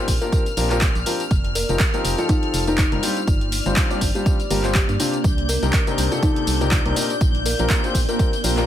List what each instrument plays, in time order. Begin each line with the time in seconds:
Already playing: ambient pad A#3, violin section F6
0.08 fm bass A#1, kick, open hi-hat, tambourine
0.22 grand piano A#2 C4 D4 F4 G4 A#4, kalimba A#4, ambient pad D5, closed hi-hat, tambourine
0.32 kick, closed hi-hat, tambourine
0.46 closed hi-hat, tambourine
0.57 fm bass A#1, grand piano A#2 C4 D4 F4 G4 A#4, open hi-hat, tambourine
0.70 grand piano A#2 C4 D4 F4 G4 A#4, clap, closed hi-hat, tambourine
0.81 kick, clap, closed hi-hat, tambourine
0.95 fm bass A#1, closed hi-hat, tambourine
1.06 grand piano F3 C4 D4 F4 G4 A#4, open hi-hat, tambourine
1.20 closed hi-hat, tambourine
1.31 fm bass F1, kick, closed hi-hat, tambourine
1.45 closed hi-hat
1.55 kalimba A#4, open hi-hat, tambourine
1.69 fm bass F1, grand piano F3 C4 D#4 F4 G4 A#4, closed hi-hat, tambourine
1.79 kick, clap, closed hi-hat, tambourine
1.94 grand piano F3 C4 D#4 F4 G4 A#4, closed hi-hat, tambourine
2.05 fm bass F1, open hi-hat, tambourine
2.18 grand piano F3 C4 D#4 F4 G4 A4, kalimba F4, closed hi-hat, tambourine
2.29 kalimba D#4, kick, closed hi-hat, tambourine
2.43 closed hi-hat
2.54 fm bass F1, open hi-hat, tambourine
2.67 grand piano F3 C4 D#4 F4 G4 A#4, kalimba D#4, closed hi-hat, tambourine
2.78 kick, clap, closed hi-hat, tambourine
2.92 fm bass F1, grand piano G3 C4 D#4 F4 G4 A#4, closed hi-hat
3.03 grand piano G3 C4 D4 F4 G4 C5, kalimba F4, open hi-hat, tambourine
3.17 kalimba F4, closed hi-hat, tambourine
3.28 fm bass G1, kick, closed hi-hat, tambourine
3.41 closed hi-hat
3.52 open hi-hat, tambourine
3.66 fm bass G1, grand piano G3 C4 D4 F4 G4 C5, closed hi-hat, tambourine
3.76 kick, clap, closed hi-hat, tambourine
3.91 grand piano G3 C4 D4 F4 G4 D5, closed hi-hat, tambourine
4.01 fm bass G1, kick, open hi-hat, tambourine
4.15 grand piano G3 C4 D4 F4 G4 C5, kalimba G4, closed hi-hat, tambourine
4.26 kick, closed hi-hat, tambourine
4.40 closed hi-hat, tambourine
4.50 fm bass G1, grand piano G3 C4 D4 F4 G4 A#4, kalimba G4, open hi-hat, tambourine
4.64 grand piano G3 C4 D4 F4 G4 C5, clap, closed hi-hat, tambourine
4.75 kalimba G4, kick, clap, closed hi-hat, tambourine
4.89 fm bass G2, closed hi-hat, tambourine
5.00 grand piano C3 C4 D4 F4 G4 C5, kalimba D4, open hi-hat, tambourine
5.13 closed hi-hat, tambourine
5.24 fm bass C2, violin section G6, kick, closed hi-hat, tambourine
5.38 closed hi-hat
5.49 kalimba A#4, open hi-hat, tambourine
5.63 fm bass C2, grand piano C3 C4 D4 D#4 G4 A#4, closed hi-hat, tambourine
5.73 kick, clap, closed hi-hat, tambourine
5.87 grand piano C3 C4 D4 D#4 G4 A#4, closed hi-hat, tambourine
5.98 fm bass C2, open hi-hat, tambourine
6.12 grand piano C3 C4 D4 D#4 G4 A4, kalimba F4, closed hi-hat, tambourine
6.23 kalimba D#4, kick, closed hi-hat, tambourine
6.36 closed hi-hat
6.47 fm bass C2, open hi-hat, tambourine
6.61 grand piano C3 C4 D4 D#4 G4 A#4, kalimba F4, closed hi-hat, tambourine
6.71 kalimba F4, kick, clap, closed hi-hat, tambourine
6.86 fm bass C2, grand piano C3 C4 D4 D#4 G4 A#4, closed hi-hat
6.96 grand piano A#2 C4 D4 D#4 G4 A#4, open hi-hat, tambourine
7.10 closed hi-hat, tambourine
7.21 fm bass A#1, kick, closed hi-hat, tambourine
7.35 closed hi-hat
7.46 kalimba A#4, open hi-hat, tambourine
7.59 fm bass A#1, grand piano A#2 C4 D4 F4 G4 A#4, closed hi-hat, tambourine
7.70 kick, clap, closed hi-hat, tambourine
7.84 grand piano A#2 C4 D4 F4 G4 C5, closed hi-hat, tambourine
7.95 fm bass A#1, kick, open hi-hat, tambourine
8.09 grand piano A#2 C4 D4 F4 G4 A#4, kalimba A#4, closed hi-hat, tambourine
8.19 kick, closed hi-hat, tambourine
8.33 closed hi-hat, tambourine
8.44 fm bass A#1, grand piano A#2 C4 D4 F4 G4 A#4, open hi-hat, tambourine
8.57 grand piano A#2 C4 D4 F4 G4 A#4, clap, closed hi-hat, tambourine